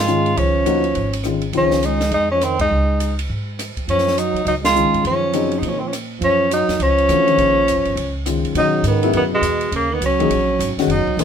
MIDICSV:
0, 0, Header, 1, 7, 480
1, 0, Start_track
1, 0, Tempo, 292398
1, 594, Time_signature, 4, 2, 24, 8
1, 18453, End_track
2, 0, Start_track
2, 0, Title_t, "Tenor saxophone"
2, 0, Program_c, 0, 66
2, 0, Note_on_c, 0, 65, 90
2, 617, Note_on_c, 0, 61, 76
2, 642, Note_off_c, 0, 65, 0
2, 2048, Note_off_c, 0, 61, 0
2, 2586, Note_on_c, 0, 61, 84
2, 3036, Note_on_c, 0, 63, 90
2, 3061, Note_off_c, 0, 61, 0
2, 3497, Note_off_c, 0, 63, 0
2, 3513, Note_on_c, 0, 63, 89
2, 3773, Note_off_c, 0, 63, 0
2, 3797, Note_on_c, 0, 61, 79
2, 4001, Note_on_c, 0, 60, 80
2, 4026, Note_off_c, 0, 61, 0
2, 4273, Note_off_c, 0, 60, 0
2, 4283, Note_on_c, 0, 63, 89
2, 5165, Note_off_c, 0, 63, 0
2, 6402, Note_on_c, 0, 61, 81
2, 6867, Note_on_c, 0, 63, 81
2, 6892, Note_off_c, 0, 61, 0
2, 7334, Note_off_c, 0, 63, 0
2, 7352, Note_on_c, 0, 63, 80
2, 7479, Note_off_c, 0, 63, 0
2, 7632, Note_on_c, 0, 65, 95
2, 8243, Note_off_c, 0, 65, 0
2, 8322, Note_on_c, 0, 61, 73
2, 9168, Note_on_c, 0, 63, 63
2, 9193, Note_off_c, 0, 61, 0
2, 9328, Note_on_c, 0, 61, 65
2, 9353, Note_off_c, 0, 63, 0
2, 9514, Note_on_c, 0, 60, 62
2, 9539, Note_off_c, 0, 61, 0
2, 9645, Note_on_c, 0, 61, 58
2, 9669, Note_off_c, 0, 60, 0
2, 9740, Note_off_c, 0, 61, 0
2, 10247, Note_on_c, 0, 61, 89
2, 10673, Note_off_c, 0, 61, 0
2, 10722, Note_on_c, 0, 63, 90
2, 11196, Note_on_c, 0, 61, 93
2, 11221, Note_off_c, 0, 63, 0
2, 13578, Note_off_c, 0, 61, 0
2, 14076, Note_on_c, 0, 63, 97
2, 14506, Note_off_c, 0, 63, 0
2, 14574, Note_on_c, 0, 59, 85
2, 14995, Note_off_c, 0, 59, 0
2, 15051, Note_on_c, 0, 59, 90
2, 15173, Note_off_c, 0, 59, 0
2, 15343, Note_on_c, 0, 56, 88
2, 15937, Note_off_c, 0, 56, 0
2, 16018, Note_on_c, 0, 58, 87
2, 16306, Note_on_c, 0, 59, 84
2, 16331, Note_off_c, 0, 58, 0
2, 16463, Note_off_c, 0, 59, 0
2, 16510, Note_on_c, 0, 61, 86
2, 17662, Note_off_c, 0, 61, 0
2, 17908, Note_on_c, 0, 63, 95
2, 18401, Note_on_c, 0, 59, 82
2, 18425, Note_off_c, 0, 63, 0
2, 18453, Note_off_c, 0, 59, 0
2, 18453, End_track
3, 0, Start_track
3, 0, Title_t, "Upright piano"
3, 0, Program_c, 1, 0
3, 125, Note_on_c, 1, 51, 50
3, 128, Note_on_c, 1, 56, 47
3, 129, Note_on_c, 1, 61, 48
3, 137, Note_on_c, 1, 65, 58
3, 838, Note_off_c, 1, 51, 0
3, 839, Note_off_c, 1, 56, 0
3, 840, Note_off_c, 1, 61, 0
3, 844, Note_off_c, 1, 65, 0
3, 1086, Note_on_c, 1, 58, 55
3, 1088, Note_on_c, 1, 53, 62
3, 1096, Note_on_c, 1, 63, 58
3, 1097, Note_on_c, 1, 66, 65
3, 1348, Note_off_c, 1, 58, 0
3, 1349, Note_off_c, 1, 53, 0
3, 1353, Note_off_c, 1, 63, 0
3, 1353, Note_off_c, 1, 66, 0
3, 2049, Note_on_c, 1, 51, 48
3, 2056, Note_on_c, 1, 56, 44
3, 2057, Note_on_c, 1, 61, 44
3, 2057, Note_on_c, 1, 65, 54
3, 2310, Note_off_c, 1, 51, 0
3, 2314, Note_off_c, 1, 56, 0
3, 2314, Note_off_c, 1, 61, 0
3, 2314, Note_off_c, 1, 65, 0
3, 2526, Note_on_c, 1, 51, 52
3, 2528, Note_on_c, 1, 56, 46
3, 2532, Note_on_c, 1, 61, 48
3, 2538, Note_on_c, 1, 65, 57
3, 3240, Note_off_c, 1, 51, 0
3, 3241, Note_off_c, 1, 56, 0
3, 3243, Note_off_c, 1, 61, 0
3, 3246, Note_off_c, 1, 65, 0
3, 7799, Note_on_c, 1, 51, 50
3, 7804, Note_on_c, 1, 61, 43
3, 7806, Note_on_c, 1, 56, 41
3, 7812, Note_on_c, 1, 65, 52
3, 8518, Note_off_c, 1, 51, 0
3, 8521, Note_off_c, 1, 61, 0
3, 8522, Note_off_c, 1, 56, 0
3, 8525, Note_off_c, 1, 65, 0
3, 8748, Note_on_c, 1, 49, 59
3, 8756, Note_on_c, 1, 54, 52
3, 8757, Note_on_c, 1, 60, 53
3, 8760, Note_on_c, 1, 63, 68
3, 9473, Note_off_c, 1, 49, 0
3, 9477, Note_off_c, 1, 54, 0
3, 9477, Note_off_c, 1, 60, 0
3, 9479, Note_off_c, 1, 63, 0
3, 11642, Note_on_c, 1, 52, 44
3, 11645, Note_on_c, 1, 57, 40
3, 11652, Note_on_c, 1, 62, 39
3, 11655, Note_on_c, 1, 66, 49
3, 11909, Note_off_c, 1, 52, 0
3, 11911, Note_off_c, 1, 57, 0
3, 11915, Note_off_c, 1, 62, 0
3, 11916, Note_off_c, 1, 66, 0
3, 11941, Note_on_c, 1, 51, 48
3, 11943, Note_on_c, 1, 56, 45
3, 11950, Note_on_c, 1, 61, 40
3, 11950, Note_on_c, 1, 65, 51
3, 12361, Note_off_c, 1, 51, 0
3, 12362, Note_off_c, 1, 56, 0
3, 12365, Note_off_c, 1, 61, 0
3, 12365, Note_off_c, 1, 65, 0
3, 13562, Note_on_c, 1, 51, 51
3, 13566, Note_on_c, 1, 61, 44
3, 13569, Note_on_c, 1, 56, 47
3, 13572, Note_on_c, 1, 65, 54
3, 14027, Note_off_c, 1, 61, 0
3, 14029, Note_off_c, 1, 56, 0
3, 14031, Note_off_c, 1, 51, 0
3, 14046, Note_off_c, 1, 65, 0
3, 14052, Note_on_c, 1, 61, 47
3, 14054, Note_on_c, 1, 56, 51
3, 14055, Note_on_c, 1, 51, 52
3, 14061, Note_on_c, 1, 66, 58
3, 14763, Note_off_c, 1, 61, 0
3, 14764, Note_off_c, 1, 56, 0
3, 14765, Note_off_c, 1, 51, 0
3, 14768, Note_off_c, 1, 66, 0
3, 14816, Note_on_c, 1, 49, 64
3, 14818, Note_on_c, 1, 54, 60
3, 14828, Note_on_c, 1, 59, 59
3, 14828, Note_on_c, 1, 64, 76
3, 15442, Note_off_c, 1, 49, 0
3, 15443, Note_off_c, 1, 54, 0
3, 15448, Note_off_c, 1, 59, 0
3, 15448, Note_off_c, 1, 64, 0
3, 16733, Note_on_c, 1, 52, 60
3, 16735, Note_on_c, 1, 58, 57
3, 16742, Note_on_c, 1, 63, 57
3, 16745, Note_on_c, 1, 68, 74
3, 16898, Note_off_c, 1, 52, 0
3, 16899, Note_off_c, 1, 58, 0
3, 16902, Note_off_c, 1, 63, 0
3, 16904, Note_off_c, 1, 68, 0
3, 17713, Note_on_c, 1, 51, 65
3, 17713, Note_on_c, 1, 61, 64
3, 17716, Note_on_c, 1, 56, 62
3, 17722, Note_on_c, 1, 66, 73
3, 17866, Note_off_c, 1, 51, 0
3, 17867, Note_off_c, 1, 61, 0
3, 17868, Note_off_c, 1, 56, 0
3, 17871, Note_off_c, 1, 66, 0
3, 18364, Note_on_c, 1, 58, 52
3, 18366, Note_on_c, 1, 52, 61
3, 18368, Note_on_c, 1, 63, 57
3, 18372, Note_on_c, 1, 68, 65
3, 18453, Note_off_c, 1, 52, 0
3, 18453, Note_off_c, 1, 58, 0
3, 18453, Note_off_c, 1, 63, 0
3, 18453, Note_off_c, 1, 68, 0
3, 18453, End_track
4, 0, Start_track
4, 0, Title_t, "Trombone"
4, 0, Program_c, 2, 57
4, 0, Note_on_c, 2, 56, 81
4, 595, Note_on_c, 2, 53, 68
4, 619, Note_off_c, 2, 56, 0
4, 2037, Note_off_c, 2, 53, 0
4, 2527, Note_on_c, 2, 53, 81
4, 3013, Note_on_c, 2, 56, 85
4, 3038, Note_off_c, 2, 53, 0
4, 3474, Note_off_c, 2, 56, 0
4, 3484, Note_on_c, 2, 56, 82
4, 3758, Note_off_c, 2, 56, 0
4, 3791, Note_on_c, 2, 53, 69
4, 3983, Note_on_c, 2, 51, 67
4, 4007, Note_off_c, 2, 53, 0
4, 4258, Note_off_c, 2, 51, 0
4, 4268, Note_on_c, 2, 56, 69
4, 5157, Note_off_c, 2, 56, 0
4, 6361, Note_on_c, 2, 53, 69
4, 6837, Note_on_c, 2, 54, 74
4, 6862, Note_off_c, 2, 53, 0
4, 7301, Note_off_c, 2, 54, 0
4, 7311, Note_on_c, 2, 54, 73
4, 7447, Note_off_c, 2, 54, 0
4, 7602, Note_on_c, 2, 56, 85
4, 8226, Note_off_c, 2, 56, 0
4, 8284, Note_on_c, 2, 53, 70
4, 9137, Note_on_c, 2, 54, 54
4, 9161, Note_off_c, 2, 53, 0
4, 9259, Note_on_c, 2, 53, 61
4, 9284, Note_off_c, 2, 54, 0
4, 9444, Note_on_c, 2, 51, 51
4, 9468, Note_off_c, 2, 53, 0
4, 9591, Note_on_c, 2, 53, 52
4, 9615, Note_off_c, 2, 51, 0
4, 9713, Note_off_c, 2, 53, 0
4, 10180, Note_on_c, 2, 53, 80
4, 10637, Note_off_c, 2, 53, 0
4, 10669, Note_on_c, 2, 54, 83
4, 11157, Note_on_c, 2, 53, 75
4, 11182, Note_off_c, 2, 54, 0
4, 13559, Note_off_c, 2, 53, 0
4, 14034, Note_on_c, 2, 54, 83
4, 14483, Note_off_c, 2, 54, 0
4, 14536, Note_on_c, 2, 51, 82
4, 14975, Note_off_c, 2, 51, 0
4, 15001, Note_on_c, 2, 51, 78
4, 15134, Note_off_c, 2, 51, 0
4, 15305, Note_on_c, 2, 47, 77
4, 15916, Note_off_c, 2, 47, 0
4, 15951, Note_on_c, 2, 49, 77
4, 16264, Note_on_c, 2, 51, 68
4, 16288, Note_off_c, 2, 49, 0
4, 16429, Note_off_c, 2, 51, 0
4, 16439, Note_on_c, 2, 54, 82
4, 17627, Note_off_c, 2, 54, 0
4, 17898, Note_on_c, 2, 54, 86
4, 18377, Note_on_c, 2, 51, 77
4, 18402, Note_off_c, 2, 54, 0
4, 18453, Note_off_c, 2, 51, 0
4, 18453, End_track
5, 0, Start_track
5, 0, Title_t, "Upright bass"
5, 0, Program_c, 3, 32
5, 0, Note_on_c, 3, 44, 78
5, 548, Note_off_c, 3, 44, 0
5, 600, Note_on_c, 3, 37, 70
5, 1044, Note_off_c, 3, 37, 0
5, 1073, Note_on_c, 3, 38, 64
5, 1521, Note_off_c, 3, 38, 0
5, 1562, Note_on_c, 3, 32, 84
5, 2472, Note_off_c, 3, 32, 0
5, 2507, Note_on_c, 3, 37, 80
5, 3425, Note_off_c, 3, 37, 0
5, 3465, Note_on_c, 3, 41, 81
5, 4385, Note_off_c, 3, 41, 0
5, 4438, Note_on_c, 3, 37, 78
5, 5351, Note_off_c, 3, 37, 0
5, 5407, Note_on_c, 3, 44, 77
5, 6127, Note_off_c, 3, 44, 0
5, 6365, Note_on_c, 3, 42, 71
5, 7086, Note_off_c, 3, 42, 0
5, 7129, Note_on_c, 3, 49, 63
5, 7299, Note_off_c, 3, 49, 0
5, 7308, Note_on_c, 3, 37, 79
5, 7910, Note_off_c, 3, 37, 0
5, 7950, Note_on_c, 3, 42, 53
5, 8097, Note_off_c, 3, 42, 0
5, 8107, Note_on_c, 3, 43, 59
5, 8263, Note_off_c, 3, 43, 0
5, 8276, Note_on_c, 3, 42, 75
5, 9191, Note_off_c, 3, 42, 0
5, 9225, Note_on_c, 3, 46, 80
5, 10145, Note_off_c, 3, 46, 0
5, 10193, Note_on_c, 3, 42, 76
5, 10920, Note_off_c, 3, 42, 0
5, 10973, Note_on_c, 3, 41, 61
5, 11146, Note_off_c, 3, 41, 0
5, 11153, Note_on_c, 3, 37, 85
5, 11604, Note_off_c, 3, 37, 0
5, 11634, Note_on_c, 3, 49, 67
5, 12084, Note_off_c, 3, 49, 0
5, 12107, Note_on_c, 3, 34, 75
5, 12709, Note_off_c, 3, 34, 0
5, 12738, Note_on_c, 3, 32, 58
5, 12889, Note_off_c, 3, 32, 0
5, 12899, Note_on_c, 3, 31, 61
5, 13048, Note_off_c, 3, 31, 0
5, 13058, Note_on_c, 3, 37, 76
5, 13791, Note_off_c, 3, 37, 0
5, 13846, Note_on_c, 3, 42, 59
5, 14022, Note_off_c, 3, 42, 0
5, 14032, Note_on_c, 3, 47, 74
5, 14491, Note_off_c, 3, 47, 0
5, 14501, Note_on_c, 3, 44, 82
5, 14976, Note_off_c, 3, 44, 0
5, 14989, Note_on_c, 3, 42, 82
5, 15443, Note_off_c, 3, 42, 0
5, 15453, Note_on_c, 3, 40, 84
5, 15931, Note_off_c, 3, 40, 0
5, 15948, Note_on_c, 3, 39, 79
5, 16418, Note_off_c, 3, 39, 0
5, 16426, Note_on_c, 3, 37, 82
5, 16896, Note_off_c, 3, 37, 0
5, 16910, Note_on_c, 3, 34, 78
5, 17378, Note_off_c, 3, 34, 0
5, 17388, Note_on_c, 3, 32, 85
5, 17667, Note_off_c, 3, 32, 0
5, 17853, Note_on_c, 3, 30, 79
5, 18138, Note_off_c, 3, 30, 0
5, 18336, Note_on_c, 3, 34, 82
5, 18453, Note_off_c, 3, 34, 0
5, 18453, End_track
6, 0, Start_track
6, 0, Title_t, "Muted upright bass strokes"
6, 6182, Note_on_c, 9, 29, 32
6, 6346, Note_off_c, 9, 29, 0
6, 17679, Note_on_c, 9, 29, 36
6, 17843, Note_off_c, 9, 29, 0
6, 18170, Note_on_c, 9, 29, 37
6, 18334, Note_off_c, 9, 29, 0
6, 18453, End_track
7, 0, Start_track
7, 0, Title_t, "Drums"
7, 129, Note_on_c, 9, 44, 54
7, 294, Note_off_c, 9, 44, 0
7, 426, Note_on_c, 9, 51, 36
7, 590, Note_off_c, 9, 51, 0
7, 613, Note_on_c, 9, 51, 53
7, 777, Note_off_c, 9, 51, 0
7, 1085, Note_on_c, 9, 44, 48
7, 1085, Note_on_c, 9, 51, 52
7, 1249, Note_off_c, 9, 44, 0
7, 1249, Note_off_c, 9, 51, 0
7, 1375, Note_on_c, 9, 51, 38
7, 1539, Note_off_c, 9, 51, 0
7, 1560, Note_on_c, 9, 51, 47
7, 1724, Note_off_c, 9, 51, 0
7, 1861, Note_on_c, 9, 51, 57
7, 2025, Note_off_c, 9, 51, 0
7, 2031, Note_on_c, 9, 37, 58
7, 2035, Note_on_c, 9, 44, 55
7, 2196, Note_off_c, 9, 37, 0
7, 2199, Note_off_c, 9, 44, 0
7, 2323, Note_on_c, 9, 51, 38
7, 2488, Note_off_c, 9, 51, 0
7, 2515, Note_on_c, 9, 51, 51
7, 2679, Note_off_c, 9, 51, 0
7, 2805, Note_on_c, 9, 38, 44
7, 2969, Note_off_c, 9, 38, 0
7, 2998, Note_on_c, 9, 44, 54
7, 2998, Note_on_c, 9, 51, 56
7, 3162, Note_off_c, 9, 44, 0
7, 3162, Note_off_c, 9, 51, 0
7, 3292, Note_on_c, 9, 38, 42
7, 3295, Note_on_c, 9, 51, 38
7, 3456, Note_off_c, 9, 38, 0
7, 3459, Note_off_c, 9, 51, 0
7, 3472, Note_on_c, 9, 51, 48
7, 3636, Note_off_c, 9, 51, 0
7, 3961, Note_on_c, 9, 37, 53
7, 3964, Note_on_c, 9, 44, 54
7, 3964, Note_on_c, 9, 51, 58
7, 4125, Note_off_c, 9, 37, 0
7, 4128, Note_off_c, 9, 44, 0
7, 4128, Note_off_c, 9, 51, 0
7, 4257, Note_on_c, 9, 36, 70
7, 4258, Note_on_c, 9, 51, 62
7, 4422, Note_off_c, 9, 36, 0
7, 4422, Note_off_c, 9, 51, 0
7, 4929, Note_on_c, 9, 44, 46
7, 4929, Note_on_c, 9, 51, 60
7, 5093, Note_off_c, 9, 44, 0
7, 5093, Note_off_c, 9, 51, 0
7, 5234, Note_on_c, 9, 51, 56
7, 5398, Note_off_c, 9, 51, 0
7, 5894, Note_on_c, 9, 37, 57
7, 5898, Note_on_c, 9, 44, 56
7, 5898, Note_on_c, 9, 51, 63
7, 6059, Note_off_c, 9, 37, 0
7, 6062, Note_off_c, 9, 44, 0
7, 6062, Note_off_c, 9, 51, 0
7, 6186, Note_on_c, 9, 36, 38
7, 6189, Note_on_c, 9, 51, 38
7, 6350, Note_off_c, 9, 36, 0
7, 6353, Note_off_c, 9, 51, 0
7, 6380, Note_on_c, 9, 51, 50
7, 6537, Note_on_c, 9, 38, 27
7, 6544, Note_off_c, 9, 51, 0
7, 6692, Note_off_c, 9, 38, 0
7, 6692, Note_on_c, 9, 38, 35
7, 6857, Note_off_c, 9, 38, 0
7, 6859, Note_on_c, 9, 44, 51
7, 6859, Note_on_c, 9, 51, 60
7, 7023, Note_off_c, 9, 44, 0
7, 7023, Note_off_c, 9, 51, 0
7, 7163, Note_on_c, 9, 51, 37
7, 7327, Note_off_c, 9, 51, 0
7, 7331, Note_on_c, 9, 51, 55
7, 7495, Note_off_c, 9, 51, 0
7, 7626, Note_on_c, 9, 38, 70
7, 7629, Note_on_c, 9, 51, 58
7, 7790, Note_off_c, 9, 38, 0
7, 7793, Note_off_c, 9, 51, 0
7, 7805, Note_on_c, 9, 44, 46
7, 7970, Note_off_c, 9, 44, 0
7, 8114, Note_on_c, 9, 51, 37
7, 8278, Note_off_c, 9, 51, 0
7, 8285, Note_on_c, 9, 51, 50
7, 8449, Note_off_c, 9, 51, 0
7, 8757, Note_on_c, 9, 44, 48
7, 8757, Note_on_c, 9, 51, 56
7, 8921, Note_off_c, 9, 44, 0
7, 8921, Note_off_c, 9, 51, 0
7, 9054, Note_on_c, 9, 51, 36
7, 9218, Note_off_c, 9, 51, 0
7, 9242, Note_on_c, 9, 51, 51
7, 9406, Note_off_c, 9, 51, 0
7, 9733, Note_on_c, 9, 37, 55
7, 9736, Note_on_c, 9, 44, 48
7, 9736, Note_on_c, 9, 51, 63
7, 9897, Note_off_c, 9, 37, 0
7, 9900, Note_off_c, 9, 44, 0
7, 9900, Note_off_c, 9, 51, 0
7, 10206, Note_on_c, 9, 51, 52
7, 10371, Note_off_c, 9, 51, 0
7, 10692, Note_on_c, 9, 44, 59
7, 10692, Note_on_c, 9, 51, 61
7, 10856, Note_off_c, 9, 44, 0
7, 10856, Note_off_c, 9, 51, 0
7, 10980, Note_on_c, 9, 38, 38
7, 10983, Note_on_c, 9, 51, 38
7, 11144, Note_off_c, 9, 38, 0
7, 11147, Note_off_c, 9, 51, 0
7, 11160, Note_on_c, 9, 51, 56
7, 11324, Note_off_c, 9, 51, 0
7, 11464, Note_on_c, 9, 51, 39
7, 11629, Note_off_c, 9, 51, 0
7, 11635, Note_on_c, 9, 37, 61
7, 11638, Note_on_c, 9, 44, 51
7, 11638, Note_on_c, 9, 51, 60
7, 11799, Note_off_c, 9, 37, 0
7, 11803, Note_off_c, 9, 44, 0
7, 11803, Note_off_c, 9, 51, 0
7, 11945, Note_on_c, 9, 51, 42
7, 12110, Note_off_c, 9, 51, 0
7, 12122, Note_on_c, 9, 51, 52
7, 12286, Note_off_c, 9, 51, 0
7, 12607, Note_on_c, 9, 44, 52
7, 12607, Note_on_c, 9, 51, 55
7, 12771, Note_off_c, 9, 44, 0
7, 12771, Note_off_c, 9, 51, 0
7, 12892, Note_on_c, 9, 51, 38
7, 13057, Note_off_c, 9, 51, 0
7, 13087, Note_on_c, 9, 51, 57
7, 13251, Note_off_c, 9, 51, 0
7, 13557, Note_on_c, 9, 37, 57
7, 13560, Note_on_c, 9, 44, 52
7, 13560, Note_on_c, 9, 51, 59
7, 13721, Note_off_c, 9, 37, 0
7, 13724, Note_off_c, 9, 44, 0
7, 13724, Note_off_c, 9, 51, 0
7, 13867, Note_on_c, 9, 51, 40
7, 14031, Note_off_c, 9, 51, 0
7, 14039, Note_on_c, 9, 51, 60
7, 14203, Note_off_c, 9, 51, 0
7, 14509, Note_on_c, 9, 44, 48
7, 14509, Note_on_c, 9, 51, 61
7, 14673, Note_off_c, 9, 44, 0
7, 14673, Note_off_c, 9, 51, 0
7, 14820, Note_on_c, 9, 51, 40
7, 14984, Note_off_c, 9, 51, 0
7, 14994, Note_on_c, 9, 51, 58
7, 15158, Note_off_c, 9, 51, 0
7, 15476, Note_on_c, 9, 44, 60
7, 15476, Note_on_c, 9, 51, 65
7, 15640, Note_off_c, 9, 44, 0
7, 15640, Note_off_c, 9, 51, 0
7, 15772, Note_on_c, 9, 51, 43
7, 15936, Note_off_c, 9, 51, 0
7, 15961, Note_on_c, 9, 51, 57
7, 16125, Note_off_c, 9, 51, 0
7, 16444, Note_on_c, 9, 44, 49
7, 16444, Note_on_c, 9, 51, 61
7, 16608, Note_off_c, 9, 44, 0
7, 16608, Note_off_c, 9, 51, 0
7, 16745, Note_on_c, 9, 51, 43
7, 16909, Note_off_c, 9, 51, 0
7, 16918, Note_on_c, 9, 51, 60
7, 17082, Note_off_c, 9, 51, 0
7, 17407, Note_on_c, 9, 44, 59
7, 17407, Note_on_c, 9, 51, 64
7, 17572, Note_off_c, 9, 44, 0
7, 17572, Note_off_c, 9, 51, 0
7, 17704, Note_on_c, 9, 38, 34
7, 17708, Note_on_c, 9, 51, 44
7, 17869, Note_off_c, 9, 38, 0
7, 17872, Note_off_c, 9, 51, 0
7, 17888, Note_on_c, 9, 51, 56
7, 18052, Note_off_c, 9, 51, 0
7, 18179, Note_on_c, 9, 36, 49
7, 18343, Note_off_c, 9, 36, 0
7, 18369, Note_on_c, 9, 44, 50
7, 18369, Note_on_c, 9, 51, 65
7, 18453, Note_off_c, 9, 44, 0
7, 18453, Note_off_c, 9, 51, 0
7, 18453, End_track
0, 0, End_of_file